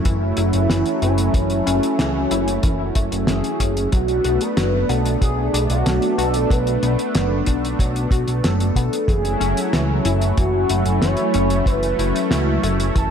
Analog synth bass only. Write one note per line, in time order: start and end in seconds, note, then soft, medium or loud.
0.05 0.33 F#1 loud
0.38 0.51 F#1 medium
0.54 0.68 F#1 medium
0.70 0.84 F#1 medium
1.02 1.30 F#1 medium
1.34 1.62 F#1 loud
1.67 1.81 F#1 medium
1.99 2.26 C#2 medium
2.31 2.59 F#1 medium
2.64 2.91 F#1 loud
2.96 3.09 F#1 medium
3.12 3.26 F#1 medium
3.28 3.42 F#1 medium
3.60 3.88 F#1 medium
3.93 4.20 B1 loud
4.25 4.38 B1 medium
4.57 4.84 F#1 medium
4.89 5.17 B1 medium
5.22 5.49 B1 loud
5.54 5.68 B1 medium
5.70 5.84 B1 medium
5.86 6.00 B1 medium
6.18 6.46 B1 medium
6.50 6.78 B1 loud
6.83 6.96 B1 medium
7.15 7.43 F#1 medium
7.47 7.75 B1 medium
7.79 8.07 B1 medium
8.11 8.25 B1 medium
8.28 8.42 B1 medium
8.44 8.71 F#1 medium
8.76 8.90 B1 medium
9.08 9.36 F#1 medium
9.41 9.55 F#1 medium
9.73 10.01 C#2 medium
10.05 10.33 F#1 medium
10.38 10.65 F#1 medium
10.70 10.84 F#1 medium
10.86 11.00 F#1 medium
11.02 11.16 F#1 medium
11.34 11.62 F#1 medium
11.66 11.94 F#1 loud
11.99 12.13 F#1 medium
12.31 12.59 C#2 medium
12.63 12.91 F#1 medium
12.96 13.11 F#1 loud